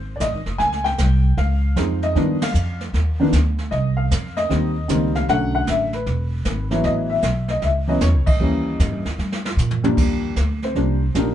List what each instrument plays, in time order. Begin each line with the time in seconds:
Already playing: upright bass G#1, upright piano C5
0.16 upright piano D5
0.20 upright bass A1, upright piano D#5, kick, snare, hi-hat pedal
0.33 upright bass G#1
0.46 upright bass F#1, snare
0.58 upright bass C#2, upright piano G#5, brush sweep, kick, snare
0.72 snare
0.84 upright piano G5, snare
0.98 upright bass C2, kick, snare, hi-hat pedal
1.37 upright bass C#2, upright piano F5, brush sweep, kick, snare
1.76 upright bass F2, upright piano F3 G#3 C4 D#4, kick, snare, hi-hat pedal
2.02 upright piano D#5, snare
2.15 upright bass G2, upright piano D#3 F3 B3 D4, brush sweep, kick, snare
2.42 upright piano F5, snare, ride
2.54 upright bass F2, hi-hat pedal
2.80 snare
2.93 upright bass D#2, brush sweep, kick, snare
3.20 upright piano D#3 F3 B3 D4
3.32 upright bass D2, kick, snare, hi-hat pedal
3.58 snare
3.71 upright bass C2, upright piano D#5, brush sweep, kick, snare
3.97 upright piano F5
4.11 upright bass F2, kick, snare, hi-hat pedal
4.37 upright piano D#5, snare
4.49 upright bass D#2, upright piano D#3 G3 A#3 C4, brush sweep, kick, snare
4.88 upright bass C#2, upright piano D#3 G3 A#3 C4, kick, snare, hi-hat pedal
5.15 upright piano F5, snare
5.28 upright bass B1, upright piano D3 F#3 A3 C#4 F#5, brush sweep, kick, snare
5.55 upright piano F#5
5.67 upright bass A1, upright piano E5, kick, snare, hi-hat pedal
5.93 upright piano B4, snare
6.06 upright bass E1, brush sweep, kick, snare
6.45 upright bass G#1, kick, snare, hi-hat pedal
6.71 upright piano E3 F#3 B3 E4, snare
6.84 upright bass A1, upright piano D#5, brush sweep, kick, snare
7.10 upright piano E5
7.22 upright bass B1, kick, snare, hi-hat pedal
7.48 upright piano D#5, snare
7.62 upright bass C#2, upright piano E5, brush sweep, kick, snare
7.87 upright piano E3 F#3 B3 C#4 D#5
8.01 upright bass E2, upright piano C#5, kick, snare, hi-hat pedal
8.14 upright bass C#2
8.26 upright bass A1, upright piano D#5, kick, crash
8.40 upright bass D#2, upright piano E3 G3 A#3 C#4, brush sweep
8.80 upright bass G#2, kick, snare, hi-hat pedal
8.92 upright bass G2
9.05 upright bass D#2, snare
9.18 upright bass G2, snare
9.32 snare
9.45 snare
9.57 upright bass A#2, floor tom, hi-hat pedal
9.71 floor tom
9.83 upright piano D#2 F3 G3 A#3 D4, floor tom
9.97 upright bass D#2, brush sweep, kick, snare, crash
10.36 upright bass D2, kick, snare, hi-hat pedal
10.62 upright piano C4 C5, snare
10.75 upright bass C2, upright piano F3 G3 A#3 D4, brush sweep, kick, snare
11.14 upright bass A#1, upright piano F3 G3 A#3 D4 D#4 G4 A#4, kick, snare, hi-hat pedal